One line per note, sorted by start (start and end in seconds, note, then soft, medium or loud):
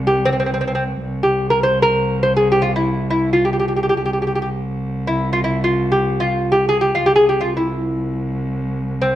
0.00 1.00 C2 medium
0.07 0.25 G4 medium
0.25 0.31 C4 medium
0.33 0.38 C4 soft
0.40 0.45 C4 medium
0.46 0.53 C4 soft
0.54 0.60 C4 medium
0.61 0.66 C4 medium
0.67 0.74 C4 medium
0.75 0.83 C4 medium
1.01 3.99 C2 medium
1.23 1.50 G4 medium
1.50 1.63 A#4 medium
1.63 1.82 C5 medium
1.82 2.21 A#4 medium
2.23 2.36 C5 medium
2.37 2.49 G#4 medium
2.52 2.61 G4 medium
2.62 2.74 F4 medium
2.76 3.09 E4 medium
3.10 3.33 E4 medium
3.33 3.43 F4 medium
3.45 3.50 G4 medium
3.53 3.58 G4 soft
3.59 3.65 G4 medium
3.68 3.73 G4 soft
3.76 3.81 G4 soft
3.83 3.88 G4 soft
3.89 3.95 G4 medium
4.00 7.00 C2 medium
4.06 4.11 G4 soft
4.13 4.18 G4 soft
4.22 4.26 G4 soft
4.27 4.33 G4 soft
4.35 4.41 G4 soft
4.42 4.48 G4 soft
5.07 5.32 E4 medium
5.33 5.43 F4 medium
5.44 5.63 E4 medium
5.64 5.92 F4 medium
5.92 6.19 G4 medium
6.20 6.54 F4 medium
6.52 6.68 G4 medium
6.69 6.81 G#4 medium
6.81 6.95 G4 medium
6.95 7.07 F4 medium
7.00 9.15 C2 medium
7.06 7.15 G4 medium
7.16 7.27 G#4 medium
7.29 7.42 G4 medium
7.41 7.56 F4 medium
7.57 8.61 E4 medium
9.02 9.15 C4 medium